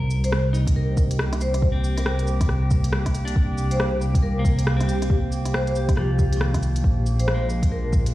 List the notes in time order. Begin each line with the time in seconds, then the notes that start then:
Already playing: C2 A#3 A#4
0.10 G4, cabasa
0.24 C5, closed hi-hat
0.31 G5, cross-stick
0.53 D#4, cabasa
0.67 kick, closed hi-hat
0.76 A#4
0.97 kick, cabasa
1.11 closed hi-hat
1.19 cross-stick
1.33 cross-stick, closed hi-hat
1.41 C5, closed hi-hat, cabasa
1.54 cross-stick, closed hi-hat
1.62 kick
1.72 C4
1.84 cabasa
1.97 A#4, cross-stick, closed hi-hat
2.06 cross-stick
2.19 closed hi-hat
2.27 cabasa
2.41 kick, cross-stick, closed hi-hat
2.49 cross-stick
2.71 kick, cabasa
2.84 closed hi-hat
2.93 cross-stick
3.06 kick, cross-stick, closed hi-hat
3.15 closed hi-hat, cabasa
3.25 D4, closed hi-hat
3.36 kick
3.58 cabasa
3.71 C5, closed hi-hat
3.80 cross-stick
4.02 cabasa
4.15 kick, closed hi-hat
4.23 A#4
4.39 A#3
4.45 kick, cabasa
4.59 closed hi-hat
4.67 cross-stick
4.77 C4, cross-stick, closed hi-hat
4.88 G4, closed hi-hat, cabasa
5.01 G4, cross-stick, closed hi-hat
5.10 kick
5.32 cabasa
5.45 cross-stick, closed hi-hat
5.54 C5, cross-stick
5.67 C5, closed hi-hat
5.75 G4, cabasa
5.89 kick, cross-stick, closed hi-hat
5.96 F3, cross-stick
6.19 kick, cabasa
6.33 D#3, closed hi-hat
6.41 cross-stick
6.54 kick, cross-stick, closed hi-hat
6.63 closed hi-hat, cabasa
6.76 closed hi-hat
6.84 A#1, kick
6.94 D4
7.00 F4
7.06 F5, cabasa
7.19 C5, closed hi-hat
7.28 cross-stick
7.34 G#3
7.50 cabasa
7.62 kick, closed hi-hat
7.72 A#4
7.93 kick, cabasa
8.06 closed hi-hat